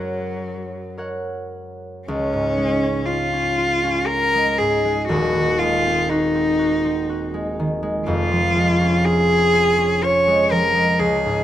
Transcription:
Already playing: F#2 F#3 A#4 C#5 F#5
0.97 A#4 C#5 F#5
2.07 C#2 C#4
2.33 G#2
2.58 G#3
2.83 C#4
3.06 F4
3.33 C#4
3.58 F4
3.84 C#4
4.07 F4 A#4
4.34 G#3
4.58 G#2 G#4
4.85 G#3
5.09 D#1 D#2 F#4
5.35 D#3
5.59 G#3 F4
5.85 C4
6.09 D#4 F#4
6.35 C4
6.59 F#4
6.85 C4
7.09 F#4
7.34 G#3
7.59 D#3
7.83 G#3
8.06 F1 F2 F4
8.31 F3
8.55 G#3
8.81 C#4
9.05 F4 G#4
9.29 C#4
9.53 F4
9.78 C#4
10.02 F4 C#5
10.28 G#3
10.52 F3 A#4
10.75 G#3
10.99 C#2 G#4
11.26 G#2

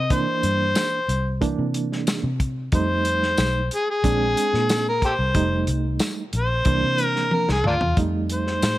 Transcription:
Already playing: C3 D#5
0.10 E3 A#3 D4 C5, kick, closed hi-hat
0.43 G2, closed hi-hat
0.75 snare, closed hi-hat, tambourine
1.08 C2, closed hi-hat
1.41 E3 A#3 D4, kick, closed hi-hat
1.59 C3
1.74 closed hi-hat
1.92 snare
2.07 snare, closed hi-hat, tambourine
2.23 C3
2.40 kick, closed hi-hat
2.72 F2 G3 A3 D#4 C5, kick, closed hi-hat
3.05 closed hi-hat
3.23 snare
3.38 B1, snare, closed hi-hat, tambourine
3.71 G#4, closed hi-hat
3.91 G#4
4.04 A#1 G#3 C4 D4, kick, closed hi-hat
4.37 closed hi-hat
4.54 A#2, snare
4.69 snare, closed hi-hat, tambourine
4.89 A#4
5.02 G4 A4 C5, kick, closed hi-hat
5.19 C2
5.35 F1 G3 A3 D#4, kick, closed hi-hat
5.67 C2, closed hi-hat
5.99 snare, closed hi-hat, tambourine
6.33 A#1 C5, closed hi-hat
6.65 C2 E3 A#3 D4, kick, closed hi-hat
6.83 C3
6.98 closed hi-hat
7.05 A#4
7.16 snare
7.31 A#4, high tom
7.49 C2 G#4, snare
7.64 D2 A#3 D4 F4, mid tom
7.81 E2, floor tom
7.97 F2 G3 A3 D#4, kick, closed hi-hat
8.30 C5, closed hi-hat
8.47 snare
8.62 A2, snare, closed hi-hat, tambourine

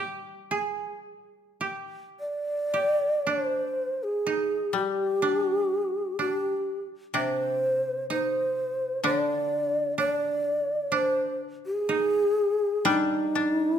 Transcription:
Already playing: G3 G4
0.51 G#4
1.61 G4
2.20 D5
2.74 G4
3.27 D4 C5
4.03 G#4
4.27 D#4
4.73 G3 G4
5.22 D4
6.19 D4 G4
7.14 C3 D4 C5
8.10 D#4 C5
9.04 D3 D4 D5
9.98 D4 D5
10.92 D4 C5
11.66 G#4
11.89 D#4
12.85 G3 D4 D#4
13.35 D4
13.62 E4

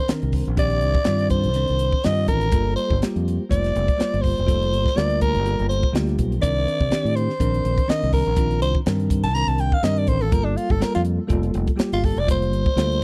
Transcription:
0.08 D#3 C4 D4 A#4, muted fingered electric bass stroke, snare, closed hi-hat
0.22 C2, closed hi-hat
0.32 kick, open hi-hat
0.45 A#1, closed hi-hat
0.56 D#3 C4 D4 G4 D5, kick, closed hi-hat
0.70 closed hi-hat
0.81 C2, closed hi-hat
0.95 kick
1.04 G2 D#3 C4 D4 F4, snare, closed hi-hat
1.19 closed hi-hat
1.30 C5, kick, closed hi-hat
1.44 C2, closed hi-hat
1.54 D#3 C4 D4 C5, closed hi-hat
1.68 C2, closed hi-hat
1.79 closed hi-hat
1.92 kick
2.04 G2 D#3 C4 D4 F4 D#5, snare, closed hi-hat
2.16 closed hi-hat
2.28 A1 A#4, kick, closed hi-hat
2.41 closed hi-hat
2.52 G1 G3 A#3 F4 A4, kick, closed hi-hat
2.76 C5, closed hi-hat
2.90 G1, kick
3.02 G3 A#3 F4 G4, snare, closed hi-hat
3.16 F2, closed hi-hat
3.28 closed hi-hat
3.49 F1 G3 A#3 F4 C5 D5, kick, closed hi-hat
3.64 snare, closed hi-hat
3.76 F1, closed hi-hat
3.88 kick, closed hi-hat
3.98 G3 A#3 F4 C5, muted fingered electric bass stroke, snare, closed hi-hat
4.14 G1, closed hi-hat
4.21 C5, kick, open hi-hat
4.38 F1, closed hi-hat
4.46 G3 A#3 F4 A4, kick, closed hi-hat
4.62 closed hi-hat
4.73 G1, closed hi-hat
4.86 kick, snare
4.95 D2 G3 A#3 F4 A#4 D5, snare, closed hi-hat
5.10 closed hi-hat
5.21 A#4, kick, closed hi-hat
5.35 G1, closed hi-hat
5.44 G3 A#3 F4 A4, closed hi-hat
5.59 G1, closed hi-hat
5.69 C5, closed hi-hat
5.83 kick
5.93 D2 G3 A#3 F4 G4, snare, closed hi-hat
6.07 snare, closed hi-hat
6.19 B1, kick, closed hi-hat
6.32 closed hi-hat
6.41 C2 D#3 C4 D4 A#4 D5, kick, closed hi-hat
6.68 closed hi-hat
6.80 C2, kick
6.90 D#3 C4 D4 G4, snare, closed hi-hat
7.05 A2, closed hi-hat
7.16 C5, closed hi-hat
7.30 snare
7.40 A#1 D#3 C4 D4 A#4, kick, closed hi-hat
7.54 closed hi-hat
7.65 A#1, closed hi-hat
7.78 kick, closed hi-hat
7.88 D#3 C4 D4 A#4 D#5, muted fingered electric bass stroke, snare, closed hi-hat
8.03 C2, snare, closed hi-hat
8.12 A#4, kick, open hi-hat
8.25 A#1, closed hi-hat
8.36 D#3 C4 D4 F4, kick, closed hi-hat
8.51 closed hi-hat
8.62 C2 C5, closed hi-hat
8.75 kick
8.86 G2 D#3 C4 D4 A#4, snare, closed hi-hat
9.00 closed hi-hat
9.10 kick, closed hi-hat
9.23 C2 A5, closed hi-hat
9.34 D#3 C4 D4 A#4 A#5, closed hi-hat
9.47 C2 A5, closed hi-hat
9.58 G5, closed hi-hat
9.72 F5, kick
9.83 G2 D#3 C4 D4 A#4 D#5, snare, closed hi-hat
9.96 D5, closed hi-hat
10.07 A1 C5, kick, closed hi-hat
10.21 A4, closed hi-hat
10.31 G1 G3 A#3 F4 A4 A#4, kick, closed hi-hat
10.44 D4
10.56 F4, closed hi-hat
10.70 G1 A4, kick
10.80 G3 A#3 F4 A4 A#4, snare, closed hi-hat
10.94 F2 F4, closed hi-hat
11.05 closed hi-hat
11.28 F1 G3 A#3 F4 A4, kick, closed hi-hat
11.43 closed hi-hat
11.54 F1, closed hi-hat
11.67 kick, closed hi-hat
11.76 G3 A#3 F4 G4, muted fingered electric bass stroke, snare, closed hi-hat
11.92 G1 F4, closed hi-hat
12.04 A4, kick, open hi-hat
12.17 F1 D5, closed hi-hat
12.27 G3 A#3 F4 C5, kick, closed hi-hat
12.42 closed hi-hat
12.52 G1, closed hi-hat
12.66 kick
12.76 D2 G3 A#3 F4 A4, snare, closed hi-hat
12.92 closed hi-hat

